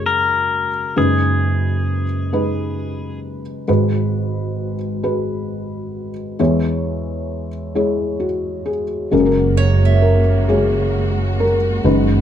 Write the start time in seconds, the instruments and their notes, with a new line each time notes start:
Already playing: felt piano F#1 F#2 G#3 F#4 G#4 A#4
0.06 pedal steel guitar A#4
0.96 felt piano F#1 F#2 G#3 D#4 B4, pedal steel guitar G#4
2.33 felt piano G#3 D#4 B4
3.68 felt piano G#1 G#2 G#3 F#4 B4
5.03 felt piano G#3 F#4 B4
6.39 felt piano E2 E3 G#3 E4 C#5
7.75 felt piano G#3 E4 G#4 C#5
8.20 felt piano F#4
8.66 felt piano G#4
9.11 felt piano F#1 F#2 G#3 C#4 F#4 A#4, fretless electric bass F#1, string section C#3 G#3 A#3 F#4
9.19 felt piano G#4
9.26 felt piano A#4
9.57 steel-string acoustic guitar C#5, felt piano C#5
9.85 steel-string acoustic guitar E5
10.02 felt piano A#4
10.49 felt piano G#3 F#4 G#4 C#5
11.40 felt piano A#4
11.83 fretless electric bass F#1, felt piano F#1 F#2 G#3 D#4 B4, string section D#3 B3